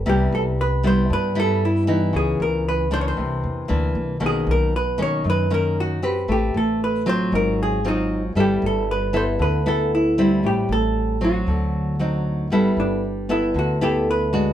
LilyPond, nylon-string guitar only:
\new Staff \with { instrumentName = "Nylon-string guitar" } { \time 4/4 \key g \major \tempo 4 = 116 << { <g b e'>4 r8 <g b e'>4 <g b e'>4 <e b ees'>8~ | <e b ees'>4. <e bes d'>4. <e bes d'>4 | <dis ais cis'>4 r8 <dis ais cis'>4 <dis ais cis'>4 <c' g' b'>8~ | <c' g' b'>4. <fis c' f'>4. <fis c' f'>4 |
<b e' a'>4. <b e' a'>4 <b e' a'>4 <g c' e'>8~ | <g c' e'>4. <fis c'>4. <fis c' ees'>4 | <b e' a'>4 r8 <b e' a'>4 <b e' a'>4 <aes d' fis'>8 | } \\ { c2 g,2 | cis2 c2 | b,2 fis,2 | a2 aes,2 |
g2 d2 | a,2 d2 | g2 d2 | } >> }